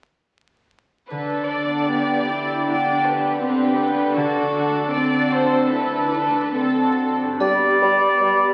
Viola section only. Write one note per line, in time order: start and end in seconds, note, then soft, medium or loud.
1.12 1.87 D4 soft
1.90 2.28 B3 soft
2.30 2.67 E4 soft
2.68 3.42 D4 soft
3.43 3.78 C4 soft
3.79 4.15 B3 soft
4.17 4.91 D4 soft
4.93 5.72 C4 soft
5.72 6.13 E4 soft
6.12 6.54 D4 soft
6.54 7.18 C4 soft